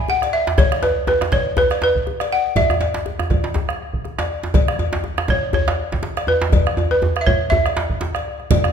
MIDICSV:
0, 0, Header, 1, 5, 480
1, 0, Start_track
1, 0, Tempo, 495458
1, 564, Time_signature, 4, 2, 24, 8
1, 8452, End_track
2, 0, Start_track
2, 0, Title_t, "Balafon"
2, 0, Program_c, 0, 12
2, 93, Note_on_c, 0, 78, 76
2, 321, Note_on_c, 0, 76, 80
2, 336, Note_off_c, 0, 78, 0
2, 564, Note_on_c, 0, 73, 80
2, 570, Note_off_c, 0, 76, 0
2, 672, Note_off_c, 0, 73, 0
2, 801, Note_on_c, 0, 71, 67
2, 1036, Note_off_c, 0, 71, 0
2, 1048, Note_on_c, 0, 71, 71
2, 1284, Note_on_c, 0, 73, 75
2, 1293, Note_off_c, 0, 71, 0
2, 1530, Note_on_c, 0, 71, 76
2, 1531, Note_off_c, 0, 73, 0
2, 1768, Note_off_c, 0, 71, 0
2, 1779, Note_on_c, 0, 71, 78
2, 2252, Note_on_c, 0, 78, 77
2, 2266, Note_off_c, 0, 71, 0
2, 2487, Note_on_c, 0, 76, 80
2, 2495, Note_off_c, 0, 78, 0
2, 3886, Note_off_c, 0, 76, 0
2, 5136, Note_on_c, 0, 73, 71
2, 5359, Note_off_c, 0, 73, 0
2, 5370, Note_on_c, 0, 73, 76
2, 6086, Note_on_c, 0, 71, 72
2, 6108, Note_off_c, 0, 73, 0
2, 6683, Note_off_c, 0, 71, 0
2, 6695, Note_on_c, 0, 71, 74
2, 6987, Note_on_c, 0, 76, 60
2, 6997, Note_off_c, 0, 71, 0
2, 7039, Note_on_c, 0, 73, 76
2, 7040, Note_off_c, 0, 76, 0
2, 7266, Note_on_c, 0, 76, 84
2, 7287, Note_off_c, 0, 73, 0
2, 7955, Note_off_c, 0, 76, 0
2, 8452, End_track
3, 0, Start_track
3, 0, Title_t, "Bombo"
3, 215, Note_on_c, 9, 37, 65
3, 312, Note_off_c, 9, 37, 0
3, 561, Note_on_c, 9, 43, 86
3, 658, Note_off_c, 9, 43, 0
3, 697, Note_on_c, 9, 37, 69
3, 794, Note_off_c, 9, 37, 0
3, 800, Note_on_c, 9, 37, 27
3, 897, Note_off_c, 9, 37, 0
3, 1038, Note_on_c, 9, 37, 28
3, 1135, Note_off_c, 9, 37, 0
3, 1174, Note_on_c, 9, 37, 61
3, 1271, Note_off_c, 9, 37, 0
3, 1281, Note_on_c, 9, 37, 26
3, 1281, Note_on_c, 9, 43, 81
3, 1378, Note_off_c, 9, 37, 0
3, 1378, Note_off_c, 9, 43, 0
3, 1522, Note_on_c, 9, 37, 26
3, 1619, Note_off_c, 9, 37, 0
3, 1657, Note_on_c, 9, 37, 72
3, 1754, Note_off_c, 9, 37, 0
3, 1893, Note_on_c, 9, 43, 62
3, 1990, Note_off_c, 9, 43, 0
3, 1999, Note_on_c, 9, 37, 28
3, 2096, Note_off_c, 9, 37, 0
3, 2133, Note_on_c, 9, 37, 72
3, 2230, Note_off_c, 9, 37, 0
3, 2477, Note_on_c, 9, 43, 82
3, 2574, Note_off_c, 9, 43, 0
3, 2616, Note_on_c, 9, 37, 67
3, 2713, Note_off_c, 9, 37, 0
3, 2724, Note_on_c, 9, 37, 27
3, 2820, Note_off_c, 9, 37, 0
3, 2960, Note_on_c, 9, 37, 28
3, 3057, Note_off_c, 9, 37, 0
3, 3095, Note_on_c, 9, 37, 66
3, 3192, Note_off_c, 9, 37, 0
3, 3200, Note_on_c, 9, 37, 28
3, 3200, Note_on_c, 9, 43, 82
3, 3297, Note_off_c, 9, 37, 0
3, 3297, Note_off_c, 9, 43, 0
3, 3444, Note_on_c, 9, 37, 30
3, 3541, Note_off_c, 9, 37, 0
3, 3573, Note_on_c, 9, 37, 76
3, 3669, Note_off_c, 9, 37, 0
3, 3812, Note_on_c, 9, 43, 69
3, 3909, Note_off_c, 9, 43, 0
3, 3919, Note_on_c, 9, 37, 29
3, 4016, Note_off_c, 9, 37, 0
3, 4054, Note_on_c, 9, 37, 69
3, 4151, Note_off_c, 9, 37, 0
3, 4399, Note_on_c, 9, 43, 96
3, 4496, Note_off_c, 9, 43, 0
3, 4537, Note_on_c, 9, 37, 76
3, 4634, Note_off_c, 9, 37, 0
3, 4644, Note_on_c, 9, 37, 31
3, 4741, Note_off_c, 9, 37, 0
3, 4886, Note_on_c, 9, 37, 30
3, 4983, Note_off_c, 9, 37, 0
3, 5018, Note_on_c, 9, 37, 80
3, 5115, Note_off_c, 9, 37, 0
3, 5120, Note_on_c, 9, 37, 28
3, 5120, Note_on_c, 9, 43, 87
3, 5217, Note_off_c, 9, 37, 0
3, 5217, Note_off_c, 9, 43, 0
3, 5367, Note_on_c, 9, 37, 31
3, 5464, Note_off_c, 9, 37, 0
3, 5501, Note_on_c, 9, 37, 72
3, 5597, Note_off_c, 9, 37, 0
3, 5743, Note_on_c, 9, 43, 72
3, 5840, Note_off_c, 9, 43, 0
3, 5848, Note_on_c, 9, 37, 29
3, 5944, Note_off_c, 9, 37, 0
3, 5980, Note_on_c, 9, 37, 74
3, 6077, Note_off_c, 9, 37, 0
3, 6322, Note_on_c, 9, 43, 96
3, 6418, Note_off_c, 9, 43, 0
3, 6461, Note_on_c, 9, 37, 78
3, 6558, Note_off_c, 9, 37, 0
3, 6942, Note_on_c, 9, 37, 75
3, 7039, Note_off_c, 9, 37, 0
3, 7042, Note_on_c, 9, 37, 30
3, 7042, Note_on_c, 9, 43, 88
3, 7139, Note_off_c, 9, 37, 0
3, 7139, Note_off_c, 9, 43, 0
3, 7417, Note_on_c, 9, 37, 76
3, 7514, Note_off_c, 9, 37, 0
3, 7521, Note_on_c, 9, 37, 31
3, 7618, Note_off_c, 9, 37, 0
3, 7650, Note_on_c, 9, 43, 71
3, 7747, Note_off_c, 9, 43, 0
3, 7755, Note_on_c, 9, 37, 29
3, 7852, Note_off_c, 9, 37, 0
3, 7893, Note_on_c, 9, 37, 70
3, 7989, Note_off_c, 9, 37, 0
3, 7995, Note_on_c, 9, 37, 29
3, 8092, Note_off_c, 9, 37, 0
3, 8135, Note_on_c, 9, 37, 26
3, 8232, Note_off_c, 9, 37, 0
3, 8240, Note_on_c, 9, 43, 96
3, 8337, Note_off_c, 9, 43, 0
3, 8372, Note_on_c, 9, 37, 83
3, 8452, Note_off_c, 9, 37, 0
3, 8452, End_track
4, 0, Start_track
4, 0, Title_t, "Djembe"
4, 82, Note_on_c, 9, 62, 23
4, 82, Note_on_c, 9, 63, 77
4, 179, Note_off_c, 9, 62, 0
4, 179, Note_off_c, 9, 63, 0
4, 222, Note_on_c, 9, 62, 58
4, 319, Note_off_c, 9, 62, 0
4, 327, Note_on_c, 9, 62, 23
4, 424, Note_off_c, 9, 62, 0
4, 457, Note_on_c, 9, 62, 89
4, 554, Note_off_c, 9, 62, 0
4, 558, Note_on_c, 9, 62, 66
4, 561, Note_on_c, 9, 63, 82
4, 561, Note_on_c, 9, 64, 87
4, 655, Note_off_c, 9, 62, 0
4, 658, Note_off_c, 9, 63, 0
4, 658, Note_off_c, 9, 64, 0
4, 697, Note_on_c, 9, 62, 61
4, 794, Note_off_c, 9, 62, 0
4, 798, Note_on_c, 9, 62, 25
4, 800, Note_off_c, 9, 62, 0
4, 800, Note_on_c, 9, 62, 72
4, 897, Note_off_c, 9, 62, 0
4, 1039, Note_on_c, 9, 62, 23
4, 1039, Note_on_c, 9, 63, 80
4, 1040, Note_off_c, 9, 62, 0
4, 1040, Note_on_c, 9, 62, 68
4, 1136, Note_off_c, 9, 63, 0
4, 1137, Note_off_c, 9, 62, 0
4, 1178, Note_on_c, 9, 62, 81
4, 1179, Note_off_c, 9, 62, 0
4, 1179, Note_on_c, 9, 62, 61
4, 1276, Note_off_c, 9, 62, 0
4, 1278, Note_on_c, 9, 62, 71
4, 1375, Note_off_c, 9, 62, 0
4, 1518, Note_on_c, 9, 63, 69
4, 1518, Note_on_c, 9, 64, 69
4, 1519, Note_on_c, 9, 62, 70
4, 1615, Note_off_c, 9, 62, 0
4, 1615, Note_off_c, 9, 63, 0
4, 1615, Note_off_c, 9, 64, 0
4, 1652, Note_on_c, 9, 62, 50
4, 1749, Note_off_c, 9, 62, 0
4, 1760, Note_on_c, 9, 62, 72
4, 1857, Note_off_c, 9, 62, 0
4, 2006, Note_on_c, 9, 63, 70
4, 2103, Note_off_c, 9, 63, 0
4, 2144, Note_on_c, 9, 62, 50
4, 2241, Note_off_c, 9, 62, 0
4, 2483, Note_on_c, 9, 63, 66
4, 2483, Note_on_c, 9, 64, 67
4, 2580, Note_off_c, 9, 63, 0
4, 2580, Note_off_c, 9, 64, 0
4, 2613, Note_on_c, 9, 63, 66
4, 2625, Note_on_c, 9, 62, 51
4, 2710, Note_off_c, 9, 63, 0
4, 2718, Note_off_c, 9, 62, 0
4, 2718, Note_on_c, 9, 62, 69
4, 2727, Note_off_c, 9, 62, 0
4, 2727, Note_on_c, 9, 62, 20
4, 2824, Note_off_c, 9, 62, 0
4, 2852, Note_on_c, 9, 62, 73
4, 2949, Note_off_c, 9, 62, 0
4, 2963, Note_on_c, 9, 62, 21
4, 2963, Note_on_c, 9, 63, 68
4, 3060, Note_off_c, 9, 62, 0
4, 3060, Note_off_c, 9, 63, 0
4, 3094, Note_on_c, 9, 63, 65
4, 3098, Note_on_c, 9, 62, 56
4, 3190, Note_off_c, 9, 63, 0
4, 3195, Note_off_c, 9, 62, 0
4, 3198, Note_on_c, 9, 63, 77
4, 3295, Note_off_c, 9, 63, 0
4, 3331, Note_on_c, 9, 62, 70
4, 3428, Note_off_c, 9, 62, 0
4, 3433, Note_on_c, 9, 62, 68
4, 3443, Note_on_c, 9, 63, 66
4, 3443, Note_on_c, 9, 64, 63
4, 3530, Note_off_c, 9, 62, 0
4, 3540, Note_off_c, 9, 63, 0
4, 3540, Note_off_c, 9, 64, 0
4, 3588, Note_on_c, 9, 62, 45
4, 3685, Note_off_c, 9, 62, 0
4, 3925, Note_on_c, 9, 63, 61
4, 4022, Note_off_c, 9, 63, 0
4, 4056, Note_on_c, 9, 62, 88
4, 4061, Note_off_c, 9, 62, 0
4, 4061, Note_on_c, 9, 62, 48
4, 4157, Note_off_c, 9, 62, 0
4, 4296, Note_on_c, 9, 62, 68
4, 4393, Note_off_c, 9, 62, 0
4, 4399, Note_on_c, 9, 62, 64
4, 4401, Note_on_c, 9, 63, 65
4, 4401, Note_on_c, 9, 64, 64
4, 4496, Note_off_c, 9, 62, 0
4, 4497, Note_off_c, 9, 63, 0
4, 4497, Note_off_c, 9, 64, 0
4, 4536, Note_on_c, 9, 62, 52
4, 4633, Note_off_c, 9, 62, 0
4, 4640, Note_on_c, 9, 63, 67
4, 4642, Note_on_c, 9, 62, 20
4, 4737, Note_off_c, 9, 63, 0
4, 4739, Note_off_c, 9, 62, 0
4, 4773, Note_on_c, 9, 62, 85
4, 4869, Note_off_c, 9, 62, 0
4, 4880, Note_on_c, 9, 62, 23
4, 4880, Note_on_c, 9, 63, 68
4, 4977, Note_off_c, 9, 62, 0
4, 4977, Note_off_c, 9, 63, 0
4, 5015, Note_on_c, 9, 62, 54
4, 5018, Note_off_c, 9, 62, 0
4, 5018, Note_on_c, 9, 62, 69
4, 5115, Note_off_c, 9, 62, 0
4, 5117, Note_on_c, 9, 62, 74
4, 5214, Note_off_c, 9, 62, 0
4, 5358, Note_on_c, 9, 63, 71
4, 5359, Note_off_c, 9, 63, 0
4, 5359, Note_on_c, 9, 63, 70
4, 5359, Note_on_c, 9, 64, 70
4, 5456, Note_off_c, 9, 63, 0
4, 5456, Note_off_c, 9, 64, 0
4, 5500, Note_on_c, 9, 62, 90
4, 5597, Note_off_c, 9, 62, 0
4, 5738, Note_on_c, 9, 62, 72
4, 5835, Note_off_c, 9, 62, 0
4, 5838, Note_on_c, 9, 62, 64
4, 5839, Note_on_c, 9, 63, 69
4, 5935, Note_off_c, 9, 62, 0
4, 5936, Note_off_c, 9, 63, 0
4, 5977, Note_on_c, 9, 62, 51
4, 6074, Note_off_c, 9, 62, 0
4, 6077, Note_on_c, 9, 63, 72
4, 6173, Note_off_c, 9, 63, 0
4, 6215, Note_on_c, 9, 62, 96
4, 6312, Note_off_c, 9, 62, 0
4, 6320, Note_on_c, 9, 63, 88
4, 6321, Note_off_c, 9, 63, 0
4, 6321, Note_on_c, 9, 62, 21
4, 6321, Note_on_c, 9, 63, 68
4, 6321, Note_on_c, 9, 64, 68
4, 6418, Note_off_c, 9, 62, 0
4, 6418, Note_off_c, 9, 63, 0
4, 6418, Note_off_c, 9, 64, 0
4, 6458, Note_on_c, 9, 62, 49
4, 6554, Note_off_c, 9, 62, 0
4, 6560, Note_on_c, 9, 63, 93
4, 6657, Note_off_c, 9, 63, 0
4, 6699, Note_on_c, 9, 62, 21
4, 6796, Note_off_c, 9, 62, 0
4, 6800, Note_on_c, 9, 63, 68
4, 6805, Note_off_c, 9, 63, 0
4, 6805, Note_on_c, 9, 63, 95
4, 6902, Note_off_c, 9, 63, 0
4, 6935, Note_on_c, 9, 62, 56
4, 7032, Note_off_c, 9, 62, 0
4, 7043, Note_on_c, 9, 63, 91
4, 7140, Note_off_c, 9, 63, 0
4, 7179, Note_on_c, 9, 62, 22
4, 7276, Note_off_c, 9, 62, 0
4, 7283, Note_on_c, 9, 63, 66
4, 7283, Note_on_c, 9, 64, 68
4, 7284, Note_off_c, 9, 63, 0
4, 7284, Note_on_c, 9, 63, 86
4, 7380, Note_off_c, 9, 64, 0
4, 7381, Note_off_c, 9, 63, 0
4, 7423, Note_on_c, 9, 62, 47
4, 7519, Note_off_c, 9, 62, 0
4, 7523, Note_on_c, 9, 62, 94
4, 7534, Note_off_c, 9, 62, 0
4, 7534, Note_on_c, 9, 62, 18
4, 7630, Note_off_c, 9, 62, 0
4, 7759, Note_on_c, 9, 62, 79
4, 7765, Note_off_c, 9, 62, 0
4, 7765, Note_on_c, 9, 62, 20
4, 7765, Note_on_c, 9, 63, 59
4, 7862, Note_off_c, 9, 62, 0
4, 7862, Note_off_c, 9, 63, 0
4, 7906, Note_on_c, 9, 62, 52
4, 8003, Note_off_c, 9, 62, 0
4, 8013, Note_on_c, 9, 62, 19
4, 8110, Note_off_c, 9, 62, 0
4, 8144, Note_on_c, 9, 62, 19
4, 8241, Note_off_c, 9, 62, 0
4, 8242, Note_on_c, 9, 63, 94
4, 8248, Note_off_c, 9, 63, 0
4, 8248, Note_on_c, 9, 63, 70
4, 8248, Note_on_c, 9, 64, 61
4, 8345, Note_off_c, 9, 63, 0
4, 8345, Note_off_c, 9, 64, 0
4, 8379, Note_on_c, 9, 62, 52
4, 8381, Note_on_c, 9, 63, 69
4, 8452, Note_off_c, 9, 62, 0
4, 8452, Note_off_c, 9, 63, 0
4, 8452, End_track
5, 0, Start_track
5, 0, Title_t, "Drums"
5, 229, Note_on_c, 9, 56, 46
5, 326, Note_off_c, 9, 56, 0
5, 570, Note_on_c, 9, 56, 57
5, 667, Note_off_c, 9, 56, 0
5, 804, Note_on_c, 9, 56, 44
5, 901, Note_off_c, 9, 56, 0
5, 1288, Note_on_c, 9, 56, 43
5, 1385, Note_off_c, 9, 56, 0
5, 1663, Note_on_c, 9, 56, 50
5, 1760, Note_off_c, 9, 56, 0
5, 2141, Note_on_c, 9, 56, 55
5, 2238, Note_off_c, 9, 56, 0
5, 2481, Note_on_c, 9, 56, 64
5, 2578, Note_off_c, 9, 56, 0
5, 2721, Note_on_c, 9, 56, 52
5, 2818, Note_off_c, 9, 56, 0
5, 3204, Note_on_c, 9, 56, 39
5, 3301, Note_off_c, 9, 56, 0
5, 4062, Note_on_c, 9, 56, 51
5, 4159, Note_off_c, 9, 56, 0
5, 4406, Note_on_c, 9, 56, 59
5, 4503, Note_off_c, 9, 56, 0
5, 4644, Note_on_c, 9, 56, 44
5, 4740, Note_off_c, 9, 56, 0
5, 5125, Note_on_c, 9, 56, 36
5, 5222, Note_off_c, 9, 56, 0
5, 5502, Note_on_c, 9, 56, 42
5, 5599, Note_off_c, 9, 56, 0
5, 5984, Note_on_c, 9, 56, 42
5, 6081, Note_off_c, 9, 56, 0
5, 6326, Note_on_c, 9, 56, 56
5, 6422, Note_off_c, 9, 56, 0
5, 6569, Note_on_c, 9, 56, 39
5, 6666, Note_off_c, 9, 56, 0
5, 7424, Note_on_c, 9, 56, 42
5, 7521, Note_off_c, 9, 56, 0
5, 7901, Note_on_c, 9, 56, 39
5, 7998, Note_off_c, 9, 56, 0
5, 8241, Note_on_c, 9, 64, 69
5, 8245, Note_on_c, 9, 56, 66
5, 8338, Note_off_c, 9, 64, 0
5, 8342, Note_off_c, 9, 56, 0
5, 8452, End_track
0, 0, End_of_file